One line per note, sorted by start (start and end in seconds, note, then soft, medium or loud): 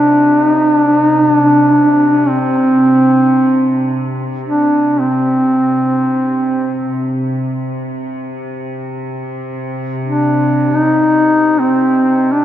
0.00 6.88 C3 soft
0.00 0.48 D4 medium
0.48 0.69 D#4 medium
0.69 1.05 D4 medium
1.05 1.26 D#4 medium
1.26 2.31 D4 medium
2.30 4.15 C4 medium
4.48 5.02 D4 medium
5.00 7.36 C4 medium
6.89 12.45 C3 soft
10.05 10.75 D4 medium
10.74 11.61 D#4 medium
11.59 12.34 C4 medium
12.33 12.45 D4 medium